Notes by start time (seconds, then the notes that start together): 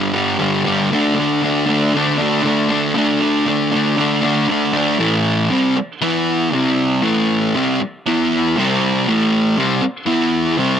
Already playing: G2 D3 G3
0.13 D3 G3
0.38 G2 D3 G3
0.64 D3 G3
0.91 D3 A3 D4
1.15 D4
1.20 A3
1.42 D3 A3 D4
1.66 A3 D4
1.70 D3
1.93 D3 A3 D4
2.18 A3 D4
2.43 D3 A3 D4
2.69 A3 D4
2.95 D3 A3 D4
3.20 A3 D4
3.46 D3 A3 D4
3.72 D3 A3 D4
3.98 D3 A3 D4
4.22 A3 D4
4.48 D3 A3 D4
4.73 D4
4.77 A3
4.99 A2 E3 A3
5.50 C3 G3 C4
5.77 muted distorted electric guitar stroke
6.01 E3 B3 E4
6.53 C3 G3 C4
7.03 A2 E3 A3
7.55 C3 G3 C4
7.81 muted distorted electric guitar stroke
8.07 E3 B3 E4
8.58 C3 G3 C4
9.08 A2 E3 A3
9.58 C3 G3 C4
9.83 muted distorted electric guitar stroke
10.06 E3 B3 E4
10.58 C3 G3 C4